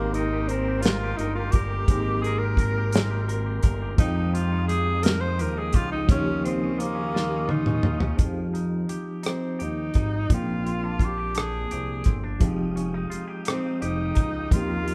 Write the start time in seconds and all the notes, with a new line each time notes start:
Already playing: G#1 D#3 G#3 A#3 C4 D#4 G4 A#4 G5 A#5 C6
0.14 D#4 A#4, closed hi-hat
0.33 G4
0.49 C4 A#4, closed hi-hat
0.68 G4
0.82 F4, snare, closed hi-hat
0.86 G#3 A#4
1.04 G4
1.17 G1 D#4 A#4, closed hi-hat
1.35 F4
1.39 G4
1.52 G1 G4 A#4, kick, closed hi-hat
1.73 G4
1.86 G#1 G#3 A#3 C4, kick, closed hi-hat
1.90 G#3 D#4 G4 A#4
2.09 G4
2.22 G#4, closed hi-hat
2.26 A#4
2.38 A#4
2.43 G4
2.57 A#4, kick, closed hi-hat
2.78 G4
2.93 G#3 A#4, snare, closed hi-hat
3.10 G4
3.28 A#4, closed hi-hat
3.46 G4
3.63 G1 A#4, kick, closed hi-hat
3.82 G4
3.96 F2 F3 G#3 C4 D#4 G4 F5 G5 D#6, kick, closed hi-hat
4.01 D#4 G5
4.16 D#4
4.34 F4 G4, closed hi-hat
4.52 D#4
4.68 G4 G#4, closed hi-hat
4.86 D#4
5.02 F3 G4 A#4, closed hi-hat
5.06 snare
5.21 D#4 C5
5.39 D#2 G4 A#4, closed hi-hat
5.57 D#4 G#4
5.73 C#2 F4 G4, kick, closed hi-hat
5.92 D#4
6.07 D#2 C#3 D#3 F3 A#3 C#4 F4 G4 F5 C#6, kick, closed hi-hat
6.11 D#4 G4
6.24 C#4
6.44 C4 F4, closed hi-hat
6.61 C#4
6.78 A#3 F4, closed hi-hat
6.95 C#4
7.14 D#3 F4, snare
7.30 C#4
7.48 D#4 F4, high tom
7.66 C#4, mid tom
7.83 D#2 F4, mid tom
7.99 C#4, floor tom
8.17 F2 F3 G#3, kick, closed hi-hat
8.21 C4 D#4 G4
8.54 D#4, closed hi-hat
8.89 D#2 G4, closed hi-hat
9.23 C4 D#4, cross-stick, closed hi-hat
9.59 D#2 D#4 G4, closed hi-hat
9.94 G#1 D#4, kick, closed hi-hat
10.29 A#1 A#2 F3 G#3 C4, kick, closed hi-hat
10.33 D4 F4 G5
10.65 C4, closed hi-hat
10.84 D4
10.99 F4, kick, closed hi-hat
11.05 G4
11.18 G4
11.35 D4 G#4, cross-stick, closed hi-hat
11.71 C2 G4, closed hi-hat
12.04 G1 C4, kick, closed hi-hat
12.24 D4
12.39 F1 F3 G#3 C4 D#4 F5 G5 D#6, kick, closed hi-hat
12.45 G4
12.76 C#4, closed hi-hat
12.94 D#4
13.10 F1 F4, closed hi-hat
13.28 G4
13.45 C4 D#4, cross-stick, closed hi-hat
13.82 F1 D#4 G4, closed hi-hat
14.15 C#2 D#4, kick, closed hi-hat
14.50 D#2 D#3 F3 A#3 C4 C#4 F4 G4 A#5 C6, kick, closed hi-hat
14.56 G4
14.87 F4, closed hi-hat